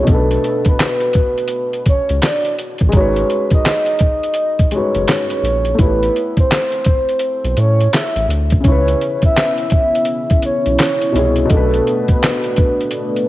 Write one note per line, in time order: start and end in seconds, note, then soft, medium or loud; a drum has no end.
0.03 2.87 B2 medium
0.03 2.89 A3 medium
0.07 0.38 B1 medium
0.07 2.91 D4 medium
0.07 0.64 A4 loud
0.07 kick loud
0.07 closed hi-hat medium
0.14 2.93 B4 medium
0.31 closed hi-hat soft
0.44 closed hi-hat medium
0.65 1.83 B4 medium
0.65 kick medium
0.65 closed hi-hat soft
0.79 snare loud
0.79 clap medium
0.79 closed hi-hat medium
1.00 closed hi-hat soft
1.13 kick medium
1.13 closed hi-hat medium
1.38 closed hi-hat soft
1.48 closed hi-hat medium
1.73 closed hi-hat soft
1.85 2.20 C#5 medium
1.85 kick medium
1.85 closed hi-hat medium
2.09 2.20 C#2 medium
2.09 closed hi-hat soft
2.22 2.55 D5 medium
2.22 snare loud
2.22 clap medium
2.22 closed hi-hat medium
2.45 closed hi-hat soft
2.58 closed hi-hat medium
2.78 2.92 A1 medium
2.78 kick medium
2.78 closed hi-hat soft
2.89 4.66 G#3 medium
2.89 closed hi-hat medium
2.93 3.24 G#1 loud
2.93 4.68 D#4 medium
2.93 4.70 F#4 medium
2.93 3.50 C#5 loud
2.93 kick loud
3.00 4.72 B4 medium
3.16 closed hi-hat soft
3.30 closed hi-hat medium
3.51 4.69 D#5 medium
3.51 kick loud
3.51 closed hi-hat soft
3.65 snare loud
3.65 clap medium
3.65 closed hi-hat medium
3.86 closed hi-hat soft
3.99 kick medium
3.99 closed hi-hat medium
4.23 closed hi-hat soft
4.34 closed hi-hat medium
4.59 kick medium
4.59 closed hi-hat soft
4.71 5.79 G#3 soft
4.71 5.80 D#4 soft
4.71 5.76 C#5 medium
4.71 closed hi-hat medium
4.76 5.81 F#4 soft
4.76 5.82 B4 soft
4.95 5.06 F#1 medium
4.95 closed hi-hat soft
5.08 snare loud
5.08 clap medium
5.08 closed hi-hat medium
5.30 closed hi-hat medium
5.43 5.74 A#1 medium
5.43 closed hi-hat medium
5.65 closed hi-hat soft
5.75 8.58 A3 medium
5.75 8.60 E4 medium
5.79 6.10 A1 loud
5.79 8.62 G4 soft
5.79 6.35 B4 loud
5.79 kick loud
5.79 closed hi-hat medium
5.86 8.64 A4 medium
6.03 closed hi-hat soft
6.16 closed hi-hat soft
6.37 7.61 C5 medium
6.37 kick medium
6.37 closed hi-hat soft
6.51 snare loud
6.51 clap medium
6.51 closed hi-hat medium
6.72 closed hi-hat soft
6.84 kick loud
6.84 closed hi-hat medium
7.09 closed hi-hat soft
7.19 closed hi-hat medium
7.44 7.55 B1 medium
7.44 closed hi-hat soft
7.57 7.88 A2 loud
7.57 7.91 C#5 medium
7.57 closed hi-hat medium
7.81 closed hi-hat soft
7.93 8.26 E5 medium
7.93 snare loud
7.93 clap medium
7.93 closed hi-hat medium
8.16 8.27 A1 loud
8.16 closed hi-hat medium
8.29 8.59 D2 medium
8.29 closed hi-hat medium
8.50 kick medium
8.50 closed hi-hat soft
8.60 11.09 C#3 medium
8.60 11.10 C#4 medium
8.60 closed hi-hat medium
8.65 8.95 C#2 loud
8.65 11.48 B3 medium
8.65 11.48 C#4 medium
8.65 11.48 E4 medium
8.65 11.12 E4 medium
8.65 9.21 C#5 loud
8.65 kick loud
8.72 11.14 B4 medium
8.88 closed hi-hat soft
9.01 closed hi-hat medium
9.22 10.40 E5 medium
9.22 kick medium
9.22 closed hi-hat soft
9.36 snare loud
9.36 clap medium
9.36 closed hi-hat medium
9.58 closed hi-hat soft
9.70 kick medium
9.70 closed hi-hat medium
9.95 closed hi-hat soft
10.05 closed hi-hat medium
10.30 kick medium
10.30 closed hi-hat soft
10.42 11.47 C#5 medium
10.42 closed hi-hat medium
10.66 10.77 B1 medium
10.66 closed hi-hat soft
10.79 snare loud
10.79 clap medium
10.79 closed hi-hat medium
11.02 closed hi-hat medium
11.12 11.45 C2 medium
11.12 11.44 B2 medium
11.12 11.50 C#4 soft
11.12 closed hi-hat medium
11.17 11.51 E4 soft
11.17 11.52 G#4 medium
11.36 closed hi-hat soft
11.45 13.29 B2 medium
11.45 13.29 A3 medium
11.50 11.81 B1 loud
11.50 13.29 A3 medium
11.50 13.29 B3 medium
11.50 13.29 D4 medium
11.50 12.07 A4 loud
11.50 kick loud
11.50 closed hi-hat medium
11.57 13.29 B4 medium
11.74 closed hi-hat soft
11.87 closed hi-hat soft
12.08 13.29 B4 medium
12.08 kick medium
12.08 closed hi-hat soft
12.23 snare loud
12.23 clap medium
12.23 closed hi-hat medium
12.44 closed hi-hat soft
12.57 kick medium
12.57 closed hi-hat medium
12.81 closed hi-hat soft
12.91 closed hi-hat medium
13.16 closed hi-hat soft